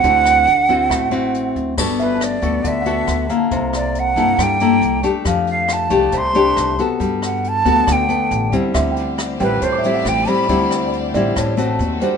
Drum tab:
CC |--------|x-------|--------|--------|
HH |xxxxxxxx|-xxxxxxx|xxxxxxxx|xxxxxxxx|
SD |-r--r---|r-r---r-|-r--r---|r-r---r-|
BD |o--oo--o|o---o---|o---o---|o---o---|

CC |--------|--------|--------|
HH |xxxxxxxx|xxxxxxxx|xxxxxxxx|
SD |-r--r---|r-r---r-|-r--r---|
BD |o--oo--o|o---o---|o---o---|